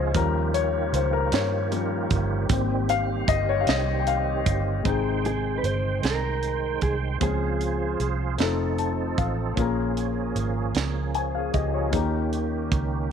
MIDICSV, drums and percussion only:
0, 0, Header, 1, 2, 480
1, 0, Start_track
1, 0, Key_signature, -4, "major"
1, 0, Tempo, 786370
1, 89, Time_signature, 6, 3, 24, 8
1, 8009, End_track
2, 0, Start_track
2, 0, Title_t, "Drums"
2, 88, Note_on_c, 9, 42, 72
2, 89, Note_on_c, 9, 36, 90
2, 149, Note_off_c, 9, 42, 0
2, 150, Note_off_c, 9, 36, 0
2, 332, Note_on_c, 9, 42, 57
2, 393, Note_off_c, 9, 42, 0
2, 573, Note_on_c, 9, 42, 65
2, 634, Note_off_c, 9, 42, 0
2, 806, Note_on_c, 9, 42, 80
2, 818, Note_on_c, 9, 38, 91
2, 867, Note_off_c, 9, 42, 0
2, 879, Note_off_c, 9, 38, 0
2, 1049, Note_on_c, 9, 42, 51
2, 1110, Note_off_c, 9, 42, 0
2, 1285, Note_on_c, 9, 42, 51
2, 1286, Note_on_c, 9, 36, 82
2, 1346, Note_off_c, 9, 42, 0
2, 1348, Note_off_c, 9, 36, 0
2, 1522, Note_on_c, 9, 42, 84
2, 1524, Note_on_c, 9, 36, 99
2, 1583, Note_off_c, 9, 42, 0
2, 1585, Note_off_c, 9, 36, 0
2, 1765, Note_on_c, 9, 42, 56
2, 1826, Note_off_c, 9, 42, 0
2, 2002, Note_on_c, 9, 36, 92
2, 2005, Note_on_c, 9, 42, 63
2, 2063, Note_off_c, 9, 36, 0
2, 2066, Note_off_c, 9, 42, 0
2, 2241, Note_on_c, 9, 42, 82
2, 2252, Note_on_c, 9, 38, 89
2, 2302, Note_off_c, 9, 42, 0
2, 2313, Note_off_c, 9, 38, 0
2, 2484, Note_on_c, 9, 42, 50
2, 2545, Note_off_c, 9, 42, 0
2, 2724, Note_on_c, 9, 36, 84
2, 2724, Note_on_c, 9, 42, 53
2, 2785, Note_off_c, 9, 36, 0
2, 2785, Note_off_c, 9, 42, 0
2, 2961, Note_on_c, 9, 42, 59
2, 2962, Note_on_c, 9, 36, 76
2, 3022, Note_off_c, 9, 42, 0
2, 3023, Note_off_c, 9, 36, 0
2, 3205, Note_on_c, 9, 42, 47
2, 3266, Note_off_c, 9, 42, 0
2, 3443, Note_on_c, 9, 42, 50
2, 3504, Note_off_c, 9, 42, 0
2, 3683, Note_on_c, 9, 42, 62
2, 3694, Note_on_c, 9, 38, 74
2, 3744, Note_off_c, 9, 42, 0
2, 3755, Note_off_c, 9, 38, 0
2, 3923, Note_on_c, 9, 42, 43
2, 3984, Note_off_c, 9, 42, 0
2, 4159, Note_on_c, 9, 42, 42
2, 4163, Note_on_c, 9, 36, 65
2, 4220, Note_off_c, 9, 42, 0
2, 4224, Note_off_c, 9, 36, 0
2, 4401, Note_on_c, 9, 36, 85
2, 4401, Note_on_c, 9, 42, 65
2, 4462, Note_off_c, 9, 36, 0
2, 4462, Note_off_c, 9, 42, 0
2, 4644, Note_on_c, 9, 42, 44
2, 4705, Note_off_c, 9, 42, 0
2, 4883, Note_on_c, 9, 42, 51
2, 4944, Note_off_c, 9, 42, 0
2, 5118, Note_on_c, 9, 42, 65
2, 5129, Note_on_c, 9, 38, 82
2, 5179, Note_off_c, 9, 42, 0
2, 5190, Note_off_c, 9, 38, 0
2, 5362, Note_on_c, 9, 42, 44
2, 5423, Note_off_c, 9, 42, 0
2, 5603, Note_on_c, 9, 36, 73
2, 5603, Note_on_c, 9, 42, 39
2, 5664, Note_off_c, 9, 36, 0
2, 5664, Note_off_c, 9, 42, 0
2, 5842, Note_on_c, 9, 42, 67
2, 5843, Note_on_c, 9, 36, 76
2, 5903, Note_off_c, 9, 42, 0
2, 5904, Note_off_c, 9, 36, 0
2, 6086, Note_on_c, 9, 42, 45
2, 6147, Note_off_c, 9, 42, 0
2, 6324, Note_on_c, 9, 42, 51
2, 6385, Note_off_c, 9, 42, 0
2, 6560, Note_on_c, 9, 42, 62
2, 6571, Note_on_c, 9, 38, 76
2, 6621, Note_off_c, 9, 42, 0
2, 6632, Note_off_c, 9, 38, 0
2, 6803, Note_on_c, 9, 42, 44
2, 6864, Note_off_c, 9, 42, 0
2, 7042, Note_on_c, 9, 42, 42
2, 7044, Note_on_c, 9, 36, 66
2, 7103, Note_off_c, 9, 42, 0
2, 7105, Note_off_c, 9, 36, 0
2, 7281, Note_on_c, 9, 42, 66
2, 7282, Note_on_c, 9, 36, 79
2, 7342, Note_off_c, 9, 42, 0
2, 7343, Note_off_c, 9, 36, 0
2, 7525, Note_on_c, 9, 42, 46
2, 7586, Note_off_c, 9, 42, 0
2, 7762, Note_on_c, 9, 36, 82
2, 7767, Note_on_c, 9, 42, 51
2, 7823, Note_off_c, 9, 36, 0
2, 7828, Note_off_c, 9, 42, 0
2, 8009, End_track
0, 0, End_of_file